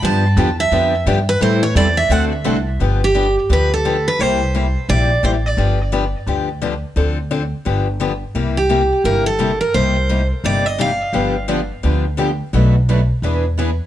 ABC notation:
X:1
M:4/4
L:1/16
Q:"Swing" 1/4=173
K:Gmix
V:1 name="Steel-string acoustic guitar"
a6 e6 z2 B2 | c2 ^c2 d2 e2 ^f2 z6 | z2 G4 z2 B2 A4 B2 | c8 d4 c2 d2- |
d2 z12 z2 | z16 | z2 G6 _B2 A4 B2 | c6 z2 d2 _e2 f4- |
f4 z12 | z16 |]
V:2 name="Steel-string acoustic guitar"
[D,F,B,DG]2 z2 [D,F,B,DG] z3 [D,F,B,DG]2 z2 [D,F,B,DG] z3 | [E,G,CEA]2 z2 [E,G,CEA] z3 [D,A,C^FA]2 z2 [D,A,CFA] z3 | [D,F,B,DG]2 z2 [D,F,B,DG] z3 [D,F,B,DG]2 z2 [D,F,B,DG] z3 | [C,G,_B,EG]2 z2 [C,G,B,EG] z3 [C,G,B,EG]2 z2 [C,G,B,EG] z3 |
[D,F,B,DG]2 z2 [D,F,B,DG] z3 [D,F,B,DG]2 z2 [D,F,B,DG] z3 | [D,F,CDA]2 z2 [D,F,CDA] z3 [D,F,B,DG]2 z2 [D,F,B,DG] z3 | [C,G,_B,EG]2 z2 [C,G,B,EG] z3 [C,G,B,EG]2 z2 [C,G,B,EG] z3 | [C,G,_B,_EG]2 z2 [C,G,B,EG] z3 [C,G,B,EG]2 z2 [C,G,B,EG] z3 |
[D,F,B,DG]2 z2 [D,F,B,DG] z3 [D,F,B,DG]2 z2 [D,F,B,DG] z3 | [B,,^F,A,D^F]2 z2 [B,,F,A,DF] z3 [E,B,D^G]2 z2 [E,B,DG] z3 |]
V:3 name="Steel-string acoustic guitar"
[D,F,B,DG]2 z2 [D,F,B,DG] z3 [D,F,B,DG]2 z2 [D,F,B,DG] z3 | [E,G,CEA]2 z2 [E,G,CEA] z3 [D,A,C^FA]2 z2 [D,A,CFA] z3 | z16 | z16 |
z16 | z16 | z16 | z16 |
[D,F,B,DG]2 z2 [D,F,B,DG] z3 [D,F,B,DG]2 z2 [D,F,B,DG] z3 | [B,,^F,A,D^FB]2 z2 [B,,F,A,DFB] z3 [E,B,D^GB]2 z2 [E,B,DGB] z3 |]
V:4 name="Upright bass" clef=bass
G,,4 E,,4 F,,4 G,,4 | A,,4 E,,4 D,,4 C,,4 | G,,,8 D,,8 | C,,8 _B,,,4 A,,,4 |
G,,,8 D,,8 | D,,8 G,,,8 | C,,8 G,,,8 | C,,8 G,,,8 |
G,,,8 D,,8 | B,,,8 E,,8 |]